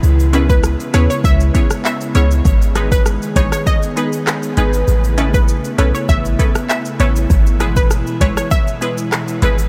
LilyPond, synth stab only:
\new Staff \with { instrumentName = "Synth stab" } { \time 4/4 \key cis \minor \tempo 4 = 99 r8 <b cis' e' gis' b'>8 r8 <b cis' e' gis' b'>8 r8 <b cis' e' gis' cis''>8 r8 <b cis' e' gis' cis''>8 | r8 <gis b dis' gis' b'>8 r8 <gis b dis' gis' cis''>8 r8 <gis b dis' gis' b'>8 r8 <gis b dis' gis' b'>8 | r8 <b cis' e' a' b'>8 r8 <b cis' e' a' b'>8 r8 <b cis' e' a' b'>8 r8 <b cis' e' a' b'>8 | r8 <gis b e' gis' b'>8 r8 <gis b e' gis' b'>8 r8 <gis b e' gis' b'>8 r8 <gis b e' gis' b'>8 | }